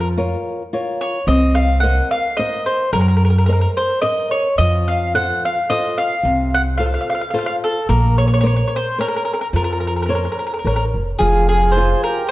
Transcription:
Already playing: F2 F3
0.01 A#4
0.17 F4 A#4 C#5
0.73 F4 A#4 C#5
1.01 C#5
1.27 C2 C4 D#5
1.55 F5
1.80 A#4 C5 D#5 F#5
2.11 F5
2.37 A#4 C5 D#5
2.66 C5
2.93 F#2 F#3 A#4
3.01 A#4
3.08 A#4
3.17 A#4
3.25 A#4
3.30 A#4
3.38 A#4
3.46 A#4 C5 D#5
3.53 A#4
3.61 A#4
3.77 C5
4.02 A#4 C5 D#5
4.31 C#5
4.58 F2 F3 D#5
4.88 F5
5.14 F4 A4 C5 F#5
5.45 F5
5.69 F4 A4 C5 D#5
5.98 F5
6.23 C2 C3
6.54 F#5
6.78 F4 A4 C5 F5
6.86 F5
6.94 F5
7.01 F5
7.10 F5
7.15 F5
7.21 F5
7.30 F4 A4 C5 F5
7.39 F5
7.46 F5
7.64 A4
7.89 A#1 A#3 A#4
8.18 C#5
8.28 C#5
8.34 C#5
8.41 A#4 C5 C#5
8.46 C#5
8.56 C#5
8.68 C#5
8.76 C5
8.98 A#4 C5 C#5
9.08 A#4
9.16 A#4
9.25 A#4
9.33 A#4
9.41 A#4
9.53 F2 F3 A#4
9.64 A#4
9.72 A#4
9.80 A#4
9.87 A#4
9.96 A#4
10.02 A#4
10.08 A#4 C5 C#5
10.15 A#4
10.25 A#4
10.32 A#4
10.39 A#4
10.47 A#4
10.54 A#4
10.59 A#4
10.65 A1 A#4 C5 C#5
10.76 A#4
10.94 F1
11.19 F1 F3 F4 G#4
11.49 F4 G#4
11.72 G#4 C5
11.77 F4 G#4 C5
12.04 G4 A#4

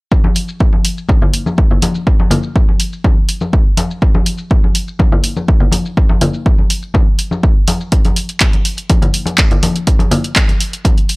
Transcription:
0.12 kick, maracas
0.24 high conga
0.35 open hi-hat, maracas
0.48 maracas
0.60 kick, maracas
0.73 high conga
0.85 open hi-hat, maracas
0.98 maracas
1.09 kick, high conga, maracas
1.22 low conga
1.34 open hi-hat, maracas
1.46 high conga, maracas
1.57 kick, maracas
1.71 low conga
1.82 open hi-hat, high conga, maracas
1.95 maracas
2.07 kick, maracas
2.20 high conga
2.31 open hi-hat, low conga, maracas
2.43 maracas
2.56 kick, maracas
2.69 high conga
2.80 open hi-hat, maracas
2.93 maracas
3.04 kick, high conga, maracas
3.29 open hi-hat, maracas
3.41 high conga, maracas
3.53 kick, maracas
3.77 open hi-hat, high conga, maracas
3.91 maracas
4.02 kick, maracas
4.15 high conga
4.26 open hi-hat, maracas
4.38 maracas
4.50 kick, maracas
4.64 high conga
4.75 open hi-hat, maracas
4.88 maracas
4.99 kick, high conga, maracas
5.12 low conga
5.23 open hi-hat, maracas
5.36 high conga, maracas
5.48 kick, maracas
5.60 low conga
5.72 open hi-hat, high conga, maracas
5.85 maracas
5.97 kick, maracas
6.09 high conga
6.21 open hi-hat, low conga, maracas
6.34 maracas
6.46 kick, maracas
6.58 high conga
6.70 open hi-hat, maracas
6.82 maracas
6.94 kick, high conga, maracas
7.19 open hi-hat, maracas
7.31 high conga, maracas
7.43 kick, maracas
7.67 open hi-hat, high conga, maracas
7.81 maracas
7.92 kick, closed hi-hat, maracas
8.05 closed hi-hat, high conga
8.16 open hi-hat, maracas
8.29 closed hi-hat, maracas
8.40 kick, clap, closed hi-hat
8.53 closed hi-hat, high conga
8.65 open hi-hat, maracas
8.77 closed hi-hat, maracas
8.90 kick, closed hi-hat, high conga, maracas
9.02 closed hi-hat, low conga
9.14 open hi-hat, maracas
9.26 closed hi-hat, high conga, maracas
9.38 kick, clap, closed hi-hat
9.51 closed hi-hat, low conga
9.63 open hi-hat, high conga, maracas
9.76 closed hi-hat, maracas
9.87 kick, closed hi-hat, maracas
9.99 closed hi-hat, high conga
10.11 open hi-hat, low conga, maracas
10.24 closed hi-hat, maracas
10.36 kick, clap, closed hi-hat
10.49 closed hi-hat, high conga
10.61 open hi-hat, maracas
10.73 closed hi-hat, maracas
10.85 kick, closed hi-hat, high conga, maracas
10.98 closed hi-hat
11.09 open hi-hat, maracas

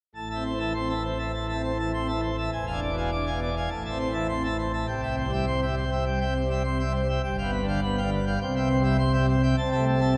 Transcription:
0.15 A1 A2 A5
0.31 E5 A5
0.35 C4
0.45 C5
0.56 E3
0.60 E5 A5
0.75 C4 C6
0.89 E5 A5
0.95 E3
1.04 C5
1.19 E5 A5
1.34 E3 A5
1.49 E5 A5
1.54 C4
1.64 C5
1.75 E3
1.79 E5 A5
1.94 C4 C6
2.08 E5 A5
2.13 E3
2.23 C5
2.38 E5 A5
2.52 E1 E2 G#5
2.67 F5 G#5
2.72 D4
2.82 D5
2.92 B2
2.97 F5 G#5
3.12 D4 D6
3.27 F5 G#5
3.32 B2
3.41 D5
3.57 F5 G#5
3.71 A1 A2 A5
3.85 E5 A5
3.90 C4
4.00 C5
4.09 E3
4.14 E5 A5
4.29 C4 C6
4.44 E5 A5
4.49 E3
4.58 C5
4.73 E5 A5
4.87 C2 C3 G5
5.02 E5 G5
5.08 C4
5.18 C5
5.28 G3
5.32 E5 G5
5.47 C4 C6
5.62 E5 G5
5.66 G3
5.77 C5
5.92 E5 G5
6.06 G3 G5
6.21 E5 G5
6.25 C4
6.36 C5
6.45 G3
6.50 E5 G5
6.65 C4 C6
6.80 E5 G5
6.85 G3
6.95 C5
7.09 E5 G5
7.23 G1 G2 G5
7.38 F5 G5
7.43 B3
7.53 B4
7.62 D3
7.68 F5 G5
7.82 B3 B5
7.97 F5 G5
8.02 D3
8.11 B4
8.27 F5 G5
8.41 C2 C3 G5
8.56 E5 G5
8.61 C4
8.69 C5
8.79 G3
8.84 E5 G5
8.99 C4 C6
9.13 E5 G5
9.19 G3
9.29 C5
9.43 E5 G5
9.57 C2 C3 A5
9.72 E5 A5
9.76 A3
9.87 A4
9.97 C4 E5 A5

